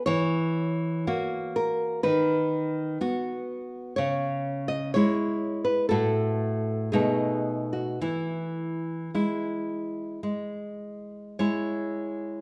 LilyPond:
<<
  \new Staff \with { instrumentName = "Nylon-string guitar" } { \time 4/4 \key e \major \tempo 4 = 59 cis''4. ais'8 b'2 | cis''8. dis''16 cis''8. b'16 a'4 gis'8. fis'16 | e'2. r4 | }
  \new Staff \with { instrumentName = "Nylon-string guitar" } { \time 4/4 \key e \major e4 <ais fis'>4 dis4 <b fis'>4 | cis4 <gis e'>4 <a, a fis'>4 <b, a dis'>4 | e4 <gis e'>4 gis4 <gis e' cis''>4 | }
>>